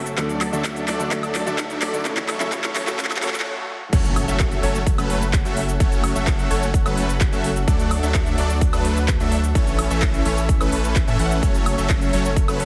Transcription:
Already playing: F#1 F#4 A4 C#5 A5, riser
0.06 closed hi-hat, shaker
0.17 D2 D3 F#3 A3 D4 F#4 A4 D5 A5, kick, clap, closed hi-hat, shaker
0.29 closed hi-hat, shaker
0.41 clap, open hi-hat, high woodblock
0.52 D2 D3 F#3 A3 D4 F#4 A4 E5, closed hi-hat, shaker
0.64 kick, clap, closed hi-hat, shaker
0.76 closed hi-hat, shaker
0.88 D2 F#3 A3 D4 A4 D5, clap, open hi-hat
0.99 D3 A3 D4 F#4 A4, closed hi-hat, shaker
1.11 D2 D3 F#3 A3 D4 F#4 A4 D5, kick, clap, closed hi-hat, shaker
1.23 closed hi-hat, high woodblock, shaker
1.35 clap, open hi-hat
1.46 D2 D3 F#3 A3 D4 F#4 A4 E5, closed hi-hat, shaker
1.58 kick, clap, closed hi-hat, shaker
1.70 closed hi-hat, shaker
1.82 D2 F#3 A3 D4 A4 D5, clap, open hi-hat
1.93 D3 A3 D4 F#4 A4, closed hi-hat, shaker
2.04 A1 C#3 F#3 A3 C#4 F#4 A4 C#5 E5 C#6, kick, clap, closed hi-hat, shaker
2.17 clap, closed hi-hat, shaker
2.29 clap, open hi-hat, high woodblock
2.40 A1 C#3 F#3 A3 C#4 F#4 A4 E5, clap, closed hi-hat, shaker
2.51 A1 C#3 F#3 A3 C#4 F#4 A4 C#5, kick, clap, closed hi-hat, shaker
2.64 clap, closed hi-hat, shaker
2.76 clap, open hi-hat
2.87 A1 C#3 F#3 A3 C#4 F#4 A4 E5, clap, closed hi-hat, shaker
2.98 A1 C#3 F#3 A3 C#4 F#4 A4 C#5, kick, clap, closed hi-hat, shaker
3.05 clap
3.11 clap, closed hi-hat, high woodblock, shaker
3.17 clap
3.22 A1 C#3 F#3 A3 C#4 F#4 A4 C#5, clap, open hi-hat
3.28 clap
3.34 clap, closed hi-hat, shaker
3.40 clap
3.93 F#1 F#3 A3 C#4 F#4 A4 C#5 F#5, kick, closed hi-hat, crash, impact, shaker
4.05 closed hi-hat, shaker
4.16 open hi-hat, high woodblock
4.28 F#1 F#3 A3 C#4 A4 E5, closed hi-hat, shaker
4.40 kick, clap, closed hi-hat, shaker
4.51 closed hi-hat, shaker
4.63 F#1 F#3 A3 C#4 A4 C#5, open hi-hat
4.75 closed hi-hat, shaker
4.87 kick, closed hi-hat, shaker
4.98 F#1 F#3 A3 C#4 A4 B4, closed hi-hat, high woodblock, shaker
5.10 open hi-hat
5.22 closed hi-hat, shaker
5.33 kick, clap, closed hi-hat, shaker
5.45 F#1 F#3 A3 C#4 A4 E5, closed hi-hat, shaker
5.57 open hi-hat
5.68 closed hi-hat, shaker
5.80 F#1 F#3 A3 C#4 A4 C#5, kick, closed hi-hat, shaker
5.92 closed hi-hat, shaker
6.04 open hi-hat, high woodblock
6.15 F#1 F#3 A3 C#4 A4 E5, closed hi-hat, shaker
6.27 kick, clap, closed hi-hat, shaker
6.39 closed hi-hat, shaker
6.50 F#1 F#3 A3 C#4 A4 C#5, open hi-hat
6.62 closed hi-hat, shaker
6.74 kick, closed hi-hat, shaker
6.86 F#1 F#3 A3 C#4 A4 B4, closed hi-hat, high woodblock, shaker
6.97 open hi-hat
7.09 closed hi-hat, shaker
7.21 kick, clap, closed hi-hat, shaker
7.32 F#1 F#3 A3 C#4 A4 E5, closed hi-hat, shaker
7.44 open hi-hat
7.56 closed hi-hat, shaker
7.68 D2 F#3 A3 D4 A4 D5, kick, closed hi-hat, shaker
7.79 closed hi-hat, shaker
7.91 open hi-hat, high woodblock
8.03 D2 F#3 A3 D4 A4 E5, closed hi-hat, shaker
8.14 kick, clap, closed hi-hat, shaker
8.26 closed hi-hat, shaker
8.38 D2 F#3 A3 D4 A4 D5, open hi-hat
8.50 closed hi-hat, shaker
8.61 kick, closed hi-hat, shaker
8.73 D2 F#3 A3 D4 A4 B4, closed hi-hat, high woodblock, shaker
8.85 open hi-hat
8.97 closed hi-hat, shaker
9.08 kick, clap, closed hi-hat, shaker
9.20 D2 F#3 A3 D4 A4 E5, closed hi-hat, shaker
9.32 open hi-hat
9.44 closed hi-hat, shaker
9.55 A1 E3 A3 C#4 E4 A4 C#5 E5, kick, closed hi-hat, shaker
9.67 closed hi-hat, shaker
9.79 open hi-hat, high woodblock
9.90 A1 E3 A3 C#4 A4 E5, closed hi-hat, shaker
10.02 kick, clap, closed hi-hat, shaker
10.14 closed hi-hat, shaker
10.25 A1 E3 A3 C#4 A4 C#5, open hi-hat
10.37 closed hi-hat, shaker
10.49 kick, closed hi-hat, shaker
10.61 A1 E3 A3 C#4 A4 B4, closed hi-hat, high woodblock, shaker
10.72 A1 E3 A3 C#4 A4 B4, open hi-hat
10.84 closed hi-hat, shaker
10.96 kick, clap, closed hi-hat, shaker
11.07 A2 E3 A3 C#4 A4 E5, closed hi-hat, shaker
11.19 A1 E3 A3 C#4 A4 F#5, open hi-hat
11.31 closed hi-hat, shaker
11.43 F#1 F#3 A3 C#4 A4 C#5, kick, closed hi-hat, shaker
11.54 closed hi-hat, shaker
11.66 open hi-hat, high woodblock
11.78 F#1 F#3 A3 C#4 A4 E5, closed hi-hat, shaker
11.90 kick, clap, closed hi-hat, shaker
12.01 closed hi-hat, shaker
12.13 F#1 F#3 A3 C#4 A4 C#5, open hi-hat
12.25 closed hi-hat, shaker
12.36 kick, closed hi-hat, shaker
12.48 F#1 F#3 A3 C#4 A4 B4, closed hi-hat, high woodblock, shaker
12.60 open hi-hat

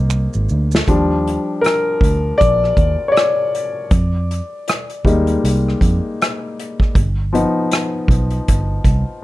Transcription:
Already playing: C2 A#3 D#4 G#4 C5
0.10 finger snap, maracas
0.33 G#1, maracas
0.49 D2, maracas
0.72 snare, maracas
0.88 D#2 F3 G3 D4, kick, closed hi-hat
1.27 closed hi-hat
1.61 A#4, closed hi-hat
1.66 cross-stick
2.01 D2, kick, closed hi-hat
2.38 A#1 D5, kick, closed hi-hat
2.64 cross-stick
2.77 D#2, kick, closed hi-hat
3.08 C#5 D5
3.17 cross-stick, closed hi-hat
3.55 closed hi-hat
3.91 F2, kick, closed hi-hat
4.31 closed hi-hat
4.68 cross-stick, closed hi-hat
4.90 closed hi-hat
5.05 D#2 G3 G#3 A#3 D#4, kick, closed hi-hat
5.27 closed hi-hat
5.44 C2, closed hi-hat
5.68 cross-stick
5.81 F2, kick, closed hi-hat
6.22 cross-stick, closed hi-hat
6.59 closed hi-hat
6.80 kick, cross-stick
6.95 G1, kick, closed hi-hat
7.33 F3 B3 D#4, closed hi-hat
7.71 cross-stick, closed hi-hat
8.08 B1, kick, closed hi-hat
8.31 closed hi-hat
8.48 G1, kick, closed hi-hat
8.85 C2, kick, closed hi-hat

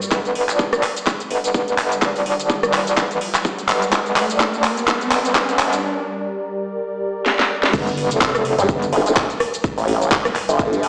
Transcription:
Already playing: D5, swell
0.02 shaker
0.11 G1 G3 G4 A#4 D5, kick, clap, riser, shaker
0.25 closed hi-hat, shaker
0.35 open hi-hat
0.49 A#1, clap, closed hi-hat, shaker
0.59 kick, shaker
0.73 cross-stick, closed hi-hat, shaker
0.83 clap, open hi-hat
0.96 closed hi-hat, shaker
1.07 kick, clap, shaker
1.20 closed hi-hat, shaker
1.30 G1, open hi-hat
1.44 closed hi-hat, shaker
1.54 kick, shaker
1.68 closed hi-hat, shaker
1.78 G1, clap, open hi-hat
1.92 closed hi-hat, shaker
2.02 A#1, kick, clap, shaker
2.16 open hi-hat, shaker
2.26 open hi-hat
2.39 A#1, closed hi-hat, shaker
2.50 kick, shaker
2.63 cross-stick, closed hi-hat, shaker
2.73 A#1, clap, open hi-hat
2.87 closed hi-hat, shaker
2.97 G1, kick, clap, shaker
3.11 G1, closed hi-hat, shaker
3.21 open hi-hat
3.35 clap, closed hi-hat, shaker
3.45 kick, shaker
3.58 closed hi-hat, shaker
3.69 G1, clap, open hi-hat
3.82 closed hi-hat, shaker
3.92 G1, kick, clap, shaker
4.06 closed hi-hat, shaker
4.16 clap, open hi-hat
4.30 A#1, closed hi-hat, shaker
4.40 kick, clap, shaker
4.54 closed hi-hat, shaker
4.64 clap, open hi-hat
4.77 closed hi-hat, shaker
4.88 kick, clap, shaker
5.01 closed hi-hat, shaker
5.11 G1, clap, open hi-hat
5.25 closed hi-hat, shaker
5.35 kick, clap, shaker
5.49 closed hi-hat, shaker
5.59 G1, clap, open hi-hat
5.73 closed hi-hat, shaker
7.26 snare
7.39 snare
7.63 snare
7.73 G1 G3 G4 A#4 D5, kick, crash, shaker
7.87 closed hi-hat, shaker
7.97 open hi-hat
8.11 F1, closed hi-hat, shaker
8.21 kick, clap, shaker
8.35 cross-stick, closed hi-hat, shaker
8.45 open hi-hat
8.59 G2, closed hi-hat, shaker
8.69 G1, kick, shaker
8.82 closed hi-hat, shaker
8.93 G1, open hi-hat
9.06 closed hi-hat, shaker
9.16 kick, clap, shaker
9.30 closed hi-hat, shaker
9.40 cross-stick, open hi-hat
9.54 closed hi-hat, shaker
9.64 kick, shaker
9.78 A1, open hi-hat, shaker
9.88 open hi-hat
10.01 closed hi-hat, shaker
10.12 kick, clap, shaker
10.25 cross-stick, closed hi-hat, shaker
10.35 clap, open hi-hat
10.49 G1, closed hi-hat, shaker
10.59 kick, shaker
10.73 closed hi-hat, shaker
10.83 open hi-hat

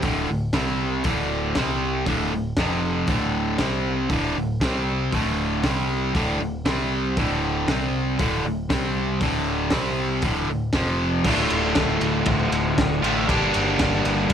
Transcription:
0.02 D1 D2 A2 D3, kick, open hi-hat
0.29 D1 D2 A2
0.53 C2 C3 G3 C4, kick, snare, open hi-hat
1.04 D1 D2 A2 D3, kick, open hi-hat
1.55 C2 C3 G3 C4, kick, snare, open hi-hat
2.06 D1 D2 A2 D3, kick, open hi-hat
2.31 D1 D2 A2
2.57 F1 F2 C3 F3, kick, snare, open hi-hat
3.07 D1 D2 A2 D3, kick, open hi-hat
3.58 C2 C3 G3 C4, kick, snare, open hi-hat
4.10 D1 D2 A2 D3, kick, open hi-hat
4.36 D1 D2 A2
4.60 C2 C3 G3 C4, kick, snare, open hi-hat
5.12 D1 D2 A2 D3, kick, open hi-hat
5.63 C2 C3 G3 C4, kick, snare, open hi-hat
6.14 D1 D2 A2 D3, kick, open hi-hat
6.40 D1 D2 A2
6.66 C2 C3 G3 C4, kick, snare, open hi-hat
7.16 D1 D2 A2 D3, kick, open hi-hat
7.68 C2 C3 G3 C4, kick, snare, open hi-hat
8.19 D1 D2 A2 D3, kick, open hi-hat
8.44 D1 D2 A2
8.69 C2 C3 G3 C4, kick, snare, open hi-hat
9.21 D1 D2 A2 D3, kick, open hi-hat
9.70 C2 C3 G3 C4, kick, snare, open hi-hat
10.22 D1 D2 A2 D3, kick, open hi-hat
10.48 D1 D2 A2
10.73 F1 F2 C3 F3, kick, snare, open hi-hat
11.24 D1 D2 A2 D3 A3, kick, crash
11.29 F4
11.50 D1, ride
11.75 D1, kick, snare, ride
12.01 D1, ride
12.26 D1, kick, ride
12.51 D1, ride
12.78 D1, kick, snare, ride
13.02 A1 A2 D3 A3 F4, ride
13.07 D2
13.28 G1 G2 D3 G3 A#3 D4 G4, kick, ride
13.54 G1, ride
13.79 G1, kick, snare, ride
14.05 G1, ride
14.29 G1, kick, ride

